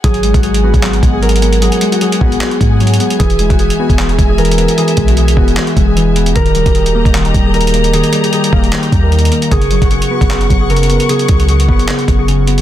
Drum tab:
HH |x--x--x--x--x--x-----x--x--x--x-----x-x-x-x--x--|x--x--x--x--x--x-----x--x--x--x-----x-x-x-x--x--|x--x--x--x--x--x-----x--x--x--x-----x-x-x-x--x--|x--x--x--x--x--x-----x--x--x--x-----x-----x--x--|
CP |------------------------x-----------------------|------------------------x-----------------------|------------------------x-----------------------|------------------------x-----------------------|
BD |o--------o-----------o--------o-----------------|------------------o-----------o-----------------|o--------o-----------o--------o-----------------|------o-----------o-----------o-----------------|

HH |x--x--x--x--x--x-----x--x--x--x-----x-x-x-x--x--|x--x--x--x--x--x-----x--x--x--x-----x-x-x-x--x--|x--x--x--x--x--x-----x--x--x--x-----x-x-x-x--x--|x--x--x--x--x--x-----x--x--x--x-----x-----x--x--|
CP |------------------------x-----------------------|------------------------x-----------------------|------------------------x-----------------------|------------------------x-----------------------|
BD |o--------o-----------o--------o-----------------|------------------o-----------o-----------------|o--------o-----------o--------o-----------------|------o-----------o-----------o-----------------|